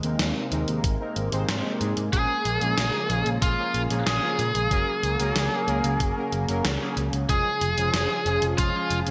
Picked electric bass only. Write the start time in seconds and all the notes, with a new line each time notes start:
0.03 D#2
0.20 D#2
0.52 D#2
0.68 D#2
0.84 G#1
1.16 G#1
1.32 G#1
1.49 G#2
1.81 G#2
1.97 G#2
2.13 A#1
2.45 A#1
2.62 A#1
2.78 A#1
3.10 A#1
3.26 A#1
3.42 A#1
3.74 A#1
3.91 A#1
4.07 A#1
4.39 A#2
4.55 A#1
5.03 C#2
5.20 C#2
5.36 C#2
5.68 C#2
5.84 C#2
6.00 F#1
6.33 F#1
6.49 F#1
6.65 C#2
6.97 C#2
7.13 C#2
7.29 F1
7.61 F1
7.78 F1
7.94 F1
8.26 F1
8.42 F1
8.58 F1
8.91 F1
9.07 F1